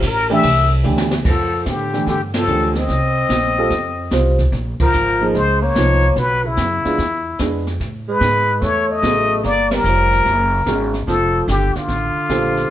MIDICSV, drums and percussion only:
0, 0, Header, 1, 2, 480
1, 0, Start_track
1, 0, Tempo, 408719
1, 1479, Time_signature, 4, 2, 24, 8
1, 14916, End_track
2, 0, Start_track
2, 0, Title_t, "Drums"
2, 27, Note_on_c, 9, 44, 68
2, 27, Note_on_c, 9, 51, 83
2, 31, Note_on_c, 9, 36, 23
2, 144, Note_off_c, 9, 44, 0
2, 144, Note_off_c, 9, 51, 0
2, 148, Note_off_c, 9, 36, 0
2, 349, Note_on_c, 9, 51, 56
2, 467, Note_off_c, 9, 51, 0
2, 507, Note_on_c, 9, 51, 79
2, 511, Note_on_c, 9, 36, 23
2, 624, Note_off_c, 9, 51, 0
2, 629, Note_off_c, 9, 36, 0
2, 983, Note_on_c, 9, 44, 68
2, 1101, Note_off_c, 9, 44, 0
2, 1149, Note_on_c, 9, 38, 73
2, 1266, Note_off_c, 9, 38, 0
2, 1306, Note_on_c, 9, 38, 94
2, 1424, Note_off_c, 9, 38, 0
2, 1468, Note_on_c, 9, 25, 45
2, 1468, Note_on_c, 9, 38, 44
2, 1468, Note_on_c, 9, 49, 74
2, 1470, Note_on_c, 9, 36, 74
2, 1586, Note_off_c, 9, 38, 0
2, 1586, Note_off_c, 9, 49, 0
2, 1587, Note_off_c, 9, 36, 0
2, 1947, Note_on_c, 9, 44, 52
2, 1950, Note_on_c, 9, 36, 24
2, 1951, Note_on_c, 9, 38, 60
2, 2064, Note_off_c, 9, 44, 0
2, 2068, Note_off_c, 9, 36, 0
2, 2069, Note_off_c, 9, 38, 0
2, 2272, Note_on_c, 9, 38, 39
2, 2390, Note_off_c, 9, 38, 0
2, 2429, Note_on_c, 9, 36, 24
2, 2431, Note_off_c, 9, 25, 0
2, 2431, Note_on_c, 9, 25, 51
2, 2431, Note_on_c, 9, 38, 43
2, 2547, Note_off_c, 9, 36, 0
2, 2549, Note_off_c, 9, 38, 0
2, 2743, Note_on_c, 9, 51, 66
2, 2748, Note_on_c, 9, 38, 79
2, 2861, Note_off_c, 9, 51, 0
2, 2865, Note_off_c, 9, 38, 0
2, 2902, Note_on_c, 9, 44, 62
2, 3019, Note_off_c, 9, 44, 0
2, 3233, Note_on_c, 9, 38, 39
2, 3351, Note_off_c, 9, 38, 0
2, 3390, Note_off_c, 9, 25, 0
2, 3390, Note_on_c, 9, 25, 47
2, 3390, Note_on_c, 9, 38, 44
2, 3392, Note_on_c, 9, 36, 26
2, 3508, Note_off_c, 9, 38, 0
2, 3509, Note_off_c, 9, 36, 0
2, 3870, Note_on_c, 9, 44, 53
2, 3872, Note_on_c, 9, 36, 28
2, 3874, Note_on_c, 9, 38, 60
2, 3987, Note_off_c, 9, 44, 0
2, 3990, Note_off_c, 9, 36, 0
2, 3992, Note_off_c, 9, 38, 0
2, 4349, Note_off_c, 9, 25, 0
2, 4349, Note_on_c, 9, 25, 44
2, 4349, Note_on_c, 9, 38, 46
2, 4351, Note_on_c, 9, 36, 23
2, 4466, Note_off_c, 9, 38, 0
2, 4469, Note_off_c, 9, 36, 0
2, 4826, Note_on_c, 9, 44, 53
2, 4831, Note_on_c, 9, 38, 60
2, 4832, Note_on_c, 9, 36, 24
2, 4944, Note_off_c, 9, 44, 0
2, 4949, Note_off_c, 9, 38, 0
2, 4950, Note_off_c, 9, 36, 0
2, 5154, Note_on_c, 9, 38, 38
2, 5155, Note_on_c, 9, 36, 55
2, 5272, Note_off_c, 9, 38, 0
2, 5273, Note_off_c, 9, 36, 0
2, 5314, Note_on_c, 9, 36, 22
2, 5316, Note_off_c, 9, 25, 0
2, 5316, Note_on_c, 9, 25, 41
2, 5316, Note_on_c, 9, 38, 43
2, 5432, Note_off_c, 9, 36, 0
2, 5434, Note_off_c, 9, 38, 0
2, 5635, Note_on_c, 9, 49, 69
2, 5636, Note_on_c, 9, 36, 82
2, 5752, Note_off_c, 9, 49, 0
2, 5753, Note_off_c, 9, 36, 0
2, 5787, Note_on_c, 9, 44, 62
2, 5905, Note_off_c, 9, 44, 0
2, 6277, Note_on_c, 9, 36, 20
2, 6280, Note_off_c, 9, 25, 0
2, 6280, Note_on_c, 9, 25, 49
2, 6280, Note_on_c, 9, 38, 42
2, 6395, Note_off_c, 9, 36, 0
2, 6397, Note_off_c, 9, 38, 0
2, 6755, Note_on_c, 9, 44, 50
2, 6759, Note_on_c, 9, 36, 25
2, 6760, Note_on_c, 9, 38, 62
2, 6873, Note_off_c, 9, 44, 0
2, 6876, Note_off_c, 9, 36, 0
2, 6877, Note_off_c, 9, 38, 0
2, 7236, Note_off_c, 9, 25, 0
2, 7236, Note_on_c, 9, 25, 48
2, 7236, Note_on_c, 9, 38, 46
2, 7240, Note_on_c, 9, 36, 24
2, 7353, Note_off_c, 9, 38, 0
2, 7357, Note_off_c, 9, 36, 0
2, 7713, Note_on_c, 9, 44, 66
2, 7718, Note_on_c, 9, 38, 61
2, 7721, Note_on_c, 9, 36, 19
2, 7831, Note_off_c, 9, 44, 0
2, 7835, Note_off_c, 9, 38, 0
2, 7838, Note_off_c, 9, 36, 0
2, 8045, Note_on_c, 9, 38, 38
2, 8162, Note_off_c, 9, 38, 0
2, 8202, Note_off_c, 9, 25, 0
2, 8202, Note_on_c, 9, 25, 51
2, 8202, Note_on_c, 9, 38, 43
2, 8203, Note_on_c, 9, 36, 20
2, 8319, Note_off_c, 9, 38, 0
2, 8320, Note_off_c, 9, 36, 0
2, 8678, Note_on_c, 9, 44, 54
2, 8683, Note_on_c, 9, 38, 63
2, 8684, Note_on_c, 9, 36, 25
2, 8796, Note_off_c, 9, 44, 0
2, 8800, Note_off_c, 9, 38, 0
2, 8801, Note_off_c, 9, 36, 0
2, 9007, Note_on_c, 9, 38, 38
2, 9125, Note_off_c, 9, 38, 0
2, 9165, Note_on_c, 9, 36, 24
2, 9168, Note_off_c, 9, 25, 0
2, 9168, Note_on_c, 9, 25, 51
2, 9168, Note_on_c, 9, 38, 46
2, 9282, Note_off_c, 9, 36, 0
2, 9286, Note_off_c, 9, 38, 0
2, 9635, Note_on_c, 9, 44, 62
2, 9640, Note_on_c, 9, 38, 61
2, 9642, Note_on_c, 9, 36, 27
2, 9752, Note_off_c, 9, 44, 0
2, 9757, Note_off_c, 9, 38, 0
2, 9760, Note_off_c, 9, 36, 0
2, 10121, Note_off_c, 9, 25, 0
2, 10121, Note_on_c, 9, 25, 42
2, 10121, Note_on_c, 9, 38, 46
2, 10123, Note_on_c, 9, 36, 20
2, 10239, Note_off_c, 9, 38, 0
2, 10240, Note_off_c, 9, 36, 0
2, 10600, Note_on_c, 9, 44, 56
2, 10603, Note_on_c, 9, 36, 21
2, 10605, Note_on_c, 9, 38, 62
2, 10718, Note_off_c, 9, 44, 0
2, 10720, Note_off_c, 9, 36, 0
2, 10723, Note_off_c, 9, 38, 0
2, 11084, Note_on_c, 9, 36, 21
2, 11090, Note_off_c, 9, 25, 0
2, 11090, Note_on_c, 9, 25, 53
2, 11090, Note_on_c, 9, 38, 45
2, 11202, Note_off_c, 9, 36, 0
2, 11207, Note_off_c, 9, 38, 0
2, 11402, Note_on_c, 9, 51, 66
2, 11406, Note_on_c, 9, 38, 80
2, 11519, Note_off_c, 9, 51, 0
2, 11524, Note_off_c, 9, 38, 0
2, 11566, Note_on_c, 9, 44, 52
2, 11683, Note_off_c, 9, 44, 0
2, 11893, Note_on_c, 9, 38, 41
2, 12010, Note_off_c, 9, 38, 0
2, 12046, Note_on_c, 9, 36, 22
2, 12047, Note_off_c, 9, 25, 0
2, 12047, Note_on_c, 9, 25, 50
2, 12047, Note_on_c, 9, 38, 46
2, 12164, Note_off_c, 9, 36, 0
2, 12164, Note_off_c, 9, 38, 0
2, 12522, Note_on_c, 9, 44, 54
2, 12525, Note_on_c, 9, 36, 22
2, 12527, Note_on_c, 9, 38, 60
2, 12639, Note_off_c, 9, 44, 0
2, 12642, Note_off_c, 9, 36, 0
2, 12644, Note_off_c, 9, 38, 0
2, 12846, Note_on_c, 9, 38, 39
2, 12963, Note_off_c, 9, 38, 0
2, 13006, Note_on_c, 9, 36, 25
2, 13011, Note_off_c, 9, 25, 0
2, 13011, Note_on_c, 9, 25, 52
2, 13011, Note_on_c, 9, 38, 47
2, 13124, Note_off_c, 9, 36, 0
2, 13129, Note_off_c, 9, 38, 0
2, 13485, Note_on_c, 9, 36, 27
2, 13486, Note_on_c, 9, 44, 62
2, 13490, Note_on_c, 9, 38, 63
2, 13602, Note_off_c, 9, 36, 0
2, 13603, Note_off_c, 9, 44, 0
2, 13608, Note_off_c, 9, 38, 0
2, 13806, Note_on_c, 9, 38, 42
2, 13924, Note_off_c, 9, 38, 0
2, 13960, Note_off_c, 9, 25, 0
2, 13960, Note_on_c, 9, 25, 50
2, 13960, Note_on_c, 9, 36, 25
2, 13960, Note_on_c, 9, 38, 47
2, 14077, Note_off_c, 9, 36, 0
2, 14078, Note_off_c, 9, 38, 0
2, 14436, Note_on_c, 9, 44, 62
2, 14438, Note_on_c, 9, 36, 24
2, 14441, Note_on_c, 9, 38, 62
2, 14554, Note_off_c, 9, 44, 0
2, 14556, Note_off_c, 9, 36, 0
2, 14559, Note_off_c, 9, 38, 0
2, 14762, Note_on_c, 9, 38, 40
2, 14879, Note_off_c, 9, 38, 0
2, 14916, Note_off_c, 9, 25, 0
2, 14916, End_track
0, 0, End_of_file